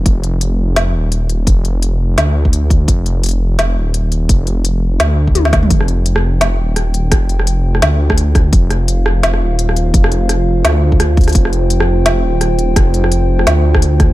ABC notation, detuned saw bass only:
X:1
M:4/4
L:1/8
Q:"Swing 16ths" 1/4=170
K:Cm
V:1 name="Detuned saw bass" clef=bass
F,,,4- F,,, E,,,3 | F,,,4 D,,4 | F,,,4- F,,, E,,,3 | F,,,4 D,,4 |
F,,,4- F,,, E,,,3 | F,,,4 D,,4 | F,,,4- F,,, E,,,3 | F,,,4 D,,4 |
F,,,4- F,,, E,,,3 | F,,,4 D,,4 |]